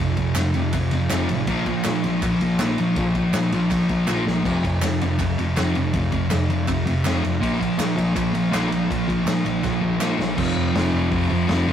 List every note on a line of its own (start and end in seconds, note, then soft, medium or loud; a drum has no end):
0.00 0.15 F1 medium
0.00 0.15 F2 medium
0.00 0.15 C3 medium
0.17 0.34 F1 medium
0.17 0.34 F2 medium
0.17 0.34 C3 medium
0.17 kick medium
0.17 ride medium
0.35 0.52 F2 medium
0.35 0.53 F2 loud
0.35 0.52 C3 medium
0.35 snare loud
0.35 clap loud
0.35 ride loud
0.54 0.71 F1 medium
0.54 0.71 F2 medium
0.54 0.71 C3 medium
0.54 ride medium
0.73 0.89 F1 medium
0.73 0.90 F2 medium
0.73 0.90 C3 medium
0.73 kick loud
0.73 clap medium
0.73 ride loud
0.91 1.09 F1 medium
0.91 1.08 F2 medium
0.91 1.09 C3 medium
0.91 ride medium
1.09 1.27 F1 loud
1.09 1.28 F2 medium
1.09 1.28 C3 loud
1.09 1.29 F3 loud
1.09 snare loud
1.09 clap loud
1.09 ride loud
1.29 1.46 A1 medium
1.29 1.46 F2 medium
1.29 1.46 C3 medium
1.29 ride medium
1.47 1.64 A#1 medium
1.47 1.65 A#2 medium
1.47 1.65 F3 medium
1.47 1.66 A#3 loud
1.47 kick loud
1.47 ride loud
1.66 1.83 A#1 medium
1.66 1.84 A#2 medium
1.66 1.84 F3 medium
1.66 kick medium
1.66 ride medium
1.84 2.02 A#2 loud
1.84 2.02 A#2 medium
1.84 2.02 F3 medium
1.84 snare loud
1.84 clap loud
1.84 ride medium
2.03 2.20 A#1 medium
2.03 2.21 A#2 medium
2.03 2.21 F3 medium
2.03 ride medium
2.22 2.39 A#1 loud
2.22 2.39 A#2 medium
2.22 2.39 F3 medium
2.22 kick loud
2.22 clap medium
2.22 ride loud
2.41 2.57 A#1 medium
2.41 2.58 A#2 medium
2.41 2.58 F3 medium
2.41 ride medium
2.59 2.76 A#1 loud
2.59 2.77 A#2 loud
2.59 2.78 F3 loud
2.59 2.78 A#3 medium
2.59 snare loud
2.59 clap loud
2.59 ride medium
2.78 2.95 A#1 medium
2.78 2.95 A#2 medium
2.78 2.96 F3 medium
2.78 ride medium
2.96 3.13 A#1 medium
2.96 3.14 A#2 medium
2.96 3.14 F3 medium
2.96 kick loud
2.96 ride medium
3.15 3.32 A#1 medium
3.15 3.32 A#2 medium
3.15 3.32 F3 medium
3.15 kick medium
3.15 ride medium
3.33 3.50 A#2 loud
3.33 3.51 A#2 medium
3.33 3.51 F3 medium
3.33 snare loud
3.33 clap loud
3.33 ride loud
3.51 3.69 A#1 medium
3.51 3.69 A#2 medium
3.51 3.70 F3 medium
3.51 ride medium
3.71 3.87 A#1 medium
3.71 3.88 A#2 medium
3.71 3.88 F3 medium
3.71 kick loud
3.71 clap medium
3.71 ride loud
3.89 4.06 A#1 medium
3.89 4.06 A#2 medium
3.89 4.07 F3 medium
3.89 kick medium
3.89 ride medium
4.07 4.24 A#1 medium
4.07 4.25 A#2 medium
4.07 4.25 F3 medium
4.07 4.26 A#3 medium
4.07 snare medium
4.07 clap medium
4.26 4.45 A#1 medium
4.26 4.43 A#2 medium
4.26 4.43 F3 medium
4.26 snare medium
4.44 4.62 F1 medium
4.44 4.62 F2 loud
4.44 4.63 C3 loud
4.44 4.64 F3 medium
4.44 kick loud
4.44 splash medium
4.44 crash loud
4.64 4.81 F1 medium
4.64 4.80 F2 medium
4.64 4.80 C3 medium
4.64 kick medium
4.64 ride medium
4.81 4.99 F2 medium
4.81 4.99 C3 medium
4.81 snare loud
4.81 clap loud
4.81 ride loud
5.01 5.18 F1 medium
5.01 5.17 F2 medium
5.01 5.17 C3 medium
5.01 ride medium
5.19 5.36 F1 medium
5.19 5.36 F2 medium
5.19 5.36 C3 medium
5.19 kick loud
5.19 clap medium
5.19 ride loud
5.38 5.55 F1 medium
5.38 5.55 F2 medium
5.38 5.55 C3 medium
5.38 ride medium
5.56 5.74 F1 loud
5.56 5.74 F2 medium
5.56 5.74 C3 loud
5.56 5.75 F3 loud
5.56 snare loud
5.56 clap medium
5.56 ride loud
5.75 5.92 F1 medium
5.75 5.92 F2 medium
5.75 5.92 C3 medium
5.75 ride medium
5.93 6.11 F1 medium
5.93 6.10 F2 medium
5.93 6.11 C3 medium
5.93 kick loud
5.93 ride medium
6.12 6.29 F1 medium
6.12 6.29 F2 medium
6.12 6.29 C3 medium
6.12 kick medium
6.12 ride medium
6.30 6.47 F2 medium
6.30 6.48 F2 loud
6.30 6.47 C3 medium
6.30 snare loud
6.30 clap loud
6.30 ride medium
6.49 6.67 F1 medium
6.49 6.66 F2 medium
6.49 6.66 C3 medium
6.49 ride medium
6.67 6.85 F1 medium
6.67 6.85 F2 medium
6.67 6.84 C3 medium
6.67 kick loud
6.67 clap medium
6.67 ride medium
6.86 7.04 F1 medium
6.86 7.03 F2 medium
6.86 7.03 C3 medium
6.86 ride medium
7.05 7.22 F1 loud
7.05 7.22 F2 medium
7.05 7.22 C3 loud
7.05 7.23 F3 loud
7.05 snare loud
7.05 clap loud
7.05 ride loud
7.23 7.43 F1 medium
7.23 7.40 F2 medium
7.23 7.40 C3 medium
7.23 ride medium
7.40 7.59 A#1 medium
7.40 7.58 A#2 medium
7.40 7.59 F3 medium
7.40 7.60 A#3 loud
7.40 kick loud
7.40 ride loud
7.59 7.78 A#1 medium
7.59 7.77 A#2 medium
7.59 7.77 F3 medium
7.59 kick medium
7.59 ride medium
7.78 7.95 A#2 medium
7.78 7.96 A#2 loud
7.78 7.95 F3 medium
7.78 snare loud
7.78 clap loud
7.78 ride loud
7.96 8.14 A#1 medium
7.96 8.14 A#2 medium
7.96 8.13 F3 medium
7.96 ride medium
8.15 8.33 A#1 medium
8.15 8.32 A#2 medium
8.15 8.32 F3 medium
8.15 kick loud
8.15 clap medium
8.15 ride loud
8.33 8.51 A#1 medium
8.33 8.49 A#2 medium
8.33 8.50 F3 medium
8.33 ride medium
8.50 8.70 A#1 loud
8.50 8.68 A#2 loud
8.50 8.68 F3 loud
8.50 8.70 A#3 loud
8.50 snare loud
8.50 clap loud
8.50 ride loud
8.69 8.88 A#1 medium
8.69 8.87 A#2 medium
8.69 8.87 F3 medium
8.69 ride medium
8.89 9.07 A#1 medium
8.89 9.06 A#2 medium
8.89 9.07 F3 medium
8.89 kick loud
8.89 ride loud
9.08 9.25 A#1 medium
9.08 9.25 A#2 medium
9.08 9.25 F3 medium
9.08 kick medium
9.08 ride medium
9.26 9.43 A#2 medium
9.26 9.43 A#2 loud
9.26 9.43 F3 medium
9.26 snare loud
9.26 clap medium
9.26 ride medium
9.45 9.62 A#1 medium
9.45 9.62 A#2 medium
9.45 9.62 F3 medium
9.45 ride medium
9.63 9.80 A#1 medium
9.63 9.80 A#2 medium
9.63 9.80 F3 medium
9.63 kick loud
9.63 snare medium
9.63 clap medium
9.81 9.99 A#1 medium
9.81 9.98 A#2 medium
9.81 9.98 F3 medium
10.00 10.17 A#1 medium
10.00 10.17 A#2 medium
10.00 10.18 F3 loud
10.00 10.19 A#3 loud
10.00 snare loud
10.00 clap medium
10.18 10.36 A#1 medium
10.18 10.35 A#2 medium
10.18 10.36 F3 medium
10.18 snare medium
10.35 10.53 F1 loud
10.35 10.72 F2 medium
10.35 10.75 C3 loud
10.35 kick loud
10.35 crash loud
10.40 10.76 F3 loud
10.56 10.71 F1 medium
10.73 10.89 F1 loud
10.73 11.08 F2 medium
10.73 11.11 C3 medium
10.73 snare loud
10.73 open hi-hat medium
10.78 11.14 F3 medium
10.93 11.08 F1 medium
11.10 11.27 F1 medium
11.10 11.47 F2 medium
11.10 11.32 C3 loud
11.10 kick loud
11.10 open hi-hat medium
11.15 11.27 F3 loud
11.29 11.45 F1 medium
11.29 11.51 F3 medium
11.34 11.49 C3 medium
11.48 11.63 F1 loud
11.48 11.73 F2 medium
11.48 11.71 C3 medium
11.48 snare loud
11.48 open hi-hat medium
11.53 11.66 F3 loud
11.66 11.73 F1 medium
11.66 11.73 F3 medium